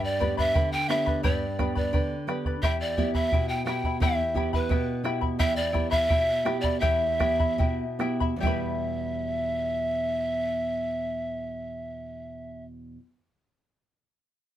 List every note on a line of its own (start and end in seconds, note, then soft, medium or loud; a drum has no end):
0.00 0.53 G2 medium
0.00 0.20 G4 medium
0.00 0.19 B4 medium
0.00 0.20 D5 medium
0.00 0.19 G5 medium
0.00 0.20 B5 medium
0.04 0.38 D5 loud
0.20 0.76 B3 soft
0.20 0.76 D4 soft
0.20 0.76 G4 medium
0.20 0.37 B4 medium
0.20 0.37 D5 medium
0.20 0.37 G5 medium
0.20 0.36 B5 medium
0.20 bombo low medium
0.37 0.54 B4 soft
0.37 0.54 D5 medium
0.37 0.70 E5 loud
0.37 0.55 B5 medium
0.37 bombo low medium
0.54 1.22 D3 medium
0.54 0.88 B4 medium
0.54 0.89 D5 medium
0.54 0.88 G5 medium
0.54 0.89 B5 medium
0.54 bombo low medium
0.73 0.91 G5 loud
0.89 1.44 B3 medium
0.89 1.45 D4 soft
0.89 1.45 G4 medium
0.89 1.07 B4 medium
0.89 1.06 D5 medium
0.89 1.25 E5 loud
0.89 1.06 G5 medium
0.89 1.05 B5 medium
0.89 bombo rim medium
1.06 1.23 B4 soft
1.06 1.23 D5 soft
1.06 1.23 B5 medium
1.06 bombo low medium
1.23 1.91 G2 medium
1.23 1.58 G4 medium
1.23 1.58 B4 medium
1.23 1.76 D5 loud
1.23 1.59 D5 medium
1.23 1.58 G5 medium
1.23 1.59 B5 loud
1.23 bombo low medium
1.59 2.14 B3 medium
1.59 2.14 D4 medium
1.59 2.14 G4 medium
1.59 1.76 B4 medium
1.59 1.75 D5 medium
1.59 1.76 G5 medium
1.59 1.74 B5 medium
1.59 bombo rim soft
1.59 bombo low medium
1.75 1.92 B4 soft
1.75 1.93 D5 medium
1.75 2.24 D5 medium
1.75 1.93 B5 medium
1.75 bombo low medium
1.93 2.60 D3 medium
1.93 2.27 B4 medium
1.93 2.28 D5 medium
1.93 2.27 G5 medium
1.93 2.28 B5 medium
1.93 bombo low medium
2.27 2.55 B3 soft
2.27 2.56 D4 soft
2.27 2.56 G4 medium
2.27 2.45 B4 medium
2.27 2.45 D5 medium
2.27 2.45 G5 medium
2.27 2.45 B5 medium
2.27 bombo rim medium
2.45 2.63 B4 soft
2.45 2.63 D5 soft
2.45 2.63 B5 soft
2.45 bombo low medium
2.62 3.30 E2 medium
2.62 2.97 E4 medium
2.62 2.97 G4 medium
2.62 2.79 E5 loud
2.62 2.97 E5 medium
2.62 2.96 G5 medium
2.62 2.97 B5 medium
2.62 bombo low medium
2.81 3.12 D5 loud
2.97 3.53 B3 medium
2.97 3.15 E4 medium
2.97 3.53 E4 medium
2.97 3.53 G4 medium
2.97 3.14 E5 medium
2.97 3.14 G5 medium
2.97 3.13 B5 medium
2.97 bombo low medium
3.14 3.32 E4 soft
3.14 3.50 E5 loud
3.14 3.32 E5 soft
3.14 3.32 B5 medium
3.14 bombo low medium
3.32 3.99 B2 medium
3.32 3.66 E4 medium
3.32 3.67 E5 medium
3.32 3.66 G5 medium
3.32 3.68 B5 medium
3.32 bombo low medium
3.49 3.65 G5 loud
3.65 4.21 B3 medium
3.65 4.22 E4 soft
3.65 3.84 E4 medium
3.65 4.21 G4 medium
3.65 3.84 E5 medium
3.65 3.98 G5 loud
3.65 3.84 G5 medium
3.65 3.84 B5 medium
3.65 bombo rim medium
3.84 4.01 E4 soft
3.84 4.01 E5 soft
3.84 4.02 B5 medium
3.84 bombo low medium
4.00 4.68 E2 medium
4.00 4.35 E4 medium
4.00 4.36 G4 medium
4.00 4.49 E5 loud
4.00 4.35 E5 medium
4.00 4.35 G5 medium
4.00 4.36 B5 medium
4.00 bombo low medium
4.34 4.90 B3 medium
4.34 4.90 E4 medium
4.34 4.53 E4 medium
4.34 4.91 G4 medium
4.34 4.53 E5 medium
4.34 4.53 G5 medium
4.34 4.52 B5 medium
4.34 bombo low medium
4.53 4.69 E4 soft
4.53 5.02 B4 loud
4.53 4.70 E5 medium
4.53 4.70 B5 medium
4.53 bombo low medium
4.69 5.37 B2 medium
4.69 5.03 E4 medium
4.69 5.04 E5 medium
4.69 5.03 G5 medium
4.69 5.04 B5 medium
4.69 bombo low medium
5.04 5.60 B3 medium
5.04 5.60 E4 soft
5.04 5.22 E4 medium
5.04 5.60 G4 medium
5.04 5.21 E5 medium
5.04 5.22 G5 medium
5.04 5.20 B5 medium
5.04 bombo rim medium
5.21 5.38 E4 soft
5.21 5.38 E5 soft
5.21 5.39 B5 medium
5.21 bombo low medium
5.39 6.07 E2 medium
5.39 5.72 E4 medium
5.39 5.74 G4 medium
5.39 5.73 E5 medium
5.39 5.58 E5 loud
5.39 5.72 G5 medium
5.39 5.73 B5 medium
5.39 bombo low medium
5.56 5.90 D5 loud
5.73 6.31 B3 medium
5.73 5.91 E4 medium
5.73 6.31 E4 soft
5.73 6.31 G4 medium
5.73 5.90 E5 medium
5.73 5.91 G5 medium
5.73 5.90 B5 medium
5.73 bombo low medium
5.91 6.09 E4 soft
5.91 6.59 E5 loud
5.91 6.09 E5 medium
5.91 6.09 B5 medium
5.91 bombo low medium
6.09 6.80 B2 medium
6.09 6.44 E4 medium
6.09 6.45 E5 medium
6.09 6.44 G5 medium
6.09 6.45 B5 medium
6.09 bombo low medium
6.45 7.05 B3 medium
6.45 7.05 E4 medium
6.45 6.64 E4 medium
6.45 7.05 G4 medium
6.45 6.63 E5 medium
6.45 6.64 G5 medium
6.45 6.63 B5 medium
6.45 bombo rim medium
6.61 6.81 D5 loud
6.61 6.81 E5 medium
6.61 6.81 B5 medium
6.61 bombo low medium
6.65 6.81 E4 soft
6.80 7.56 E2 medium
6.80 7.19 E4 medium
6.80 7.20 G4 medium
6.80 7.99 E5 loud
6.80 7.19 E5 medium
6.80 7.18 G5 medium
6.80 7.20 B5 medium
6.80 bombo low medium
7.19 7.83 B3 medium
7.19 7.84 E4 medium
7.19 7.39 E4 medium
7.19 7.84 G4 medium
7.19 7.39 E5 medium
7.19 7.39 G5 medium
7.19 7.38 B5 medium
7.19 bombo rim medium
7.19 bombo low medium
7.39 7.58 E4 soft
7.39 7.59 E5 medium
7.39 7.59 B5 medium
7.39 bombo low medium
7.58 8.37 B2 medium
7.58 7.99 E4 medium
7.58 8.00 E5 medium
7.58 7.99 G5 medium
7.58 8.00 B5 medium
7.58 bombo low medium
7.99 8.33 B3 medium
7.99 8.33 E4 soft
7.99 8.21 E4 medium
7.99 8.33 G4 medium
7.99 8.20 E5 medium
7.99 8.21 G5 medium
7.99 8.19 B5 medium
7.99 bombo rim medium
8.20 8.43 E4 soft
8.20 8.42 E5 medium
8.20 8.42 B5 medium
8.20 bombo low medium
8.36 12.96 E2 medium
8.36 12.98 B2 medium
8.40 13.00 G3 medium
8.40 13.08 E4 medium
8.40 13.04 G4 medium
8.40 12.65 E5 loud
8.40 13.06 G5 medium
8.40 bombo low medium
8.45 13.04 E4 soft
8.45 13.06 B4 medium
8.45 13.09 E5 medium
8.45 13.10 B5 medium